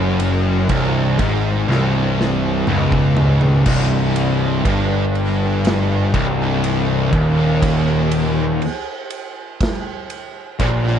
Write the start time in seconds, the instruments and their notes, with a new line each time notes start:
Already playing: picked electric bass F#1, distorted electric guitar F#2
0.20 ride
0.69 picked electric bass C1, distorted electric guitar C2, kick, ride
1.19 picked electric bass G#1, distorted electric guitar G#2, kick, ride
1.68 picked electric bass C1, distorted electric guitar C2, snare
2.21 snare
2.67 picked electric bass C#1, distorted electric guitar C#2, mid tom
2.92 kick
3.16 floor tom
3.41 floor tom
3.66 picked electric bass C1, distorted electric guitar C2, kick, crash
4.16 ride
4.65 picked electric bass G1, distorted electric guitar G2, kick, ride
5.15 ride
5.65 snare, ride
6.12 picked electric bass C1, distorted electric guitar C2, kick, ride
6.64 ride
7.12 picked electric bass D#1, distorted electric guitar D#2, kick, ride
7.62 kick, ride
8.11 ride
8.62 ride
9.10 ride
9.60 kick, snare, ride
10.10 ride
10.60 picked electric bass A#1, distorted electric guitar A#2, kick, ride
10.87 snare